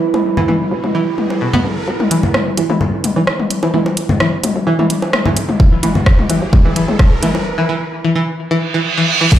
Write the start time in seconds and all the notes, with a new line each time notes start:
Already playing: E1 E4 B4 B5, riser
0.14 high tom, high bongo
0.37 E3, low conga
0.48 E3, high tom
0.71 E1
0.84 E1, high tom
0.95 E3
1.18 high tom
1.30 high bongo
1.41 B2
1.53 B3, high tom, low conga
1.65 A1
1.88 E1, riser
2.00 high tom
2.11 E3, closed hi-hat
2.23 low conga
2.34 cross-stick, high tom
2.57 E1 E3, closed hi-hat
2.70 E1 E3, high tom
2.81 low conga
3.04 closed hi-hat, high tom
3.16 B1 E3
3.27 cross-stick
3.39 high tom
3.50 closed hi-hat
3.63 E3, high bongo
3.74 E3, high tom
3.86 high bongo
3.97 closed hi-hat
4.09 high tom, low conga
4.20 E3, cross-stick
4.44 E1, closed hi-hat, high tom
4.56 E1
4.67 E1 E3
4.79 E3, high tom
4.90 closed hi-hat
5.02 high bongo
5.13 cross-stick, high tom
5.26 E3, low conga
5.37 closed hi-hat
5.49 E1, high tom
5.60 E1, kick
5.72 E3
5.83 E3, closed hi-hat, high tom
5.95 low conga
6.06 kick, cross-stick
6.19 high tom
6.29 E1 E3, closed hi-hat
6.42 E1
6.53 kick, high tom, low conga
6.65 E3
6.76 E3, closed hi-hat
6.88 B1, high tom
6.99 kick, cross-stick
7.23 E3, closed hi-hat, high tom
7.35 high bongo
7.58 E3
7.69 E3
8.05 E3
8.16 E3
8.39 reverse cymbal
8.51 E3
8.74 E3
8.98 E3
9.21 E3
9.32 E1, kick, closed hi-hat, crash, impact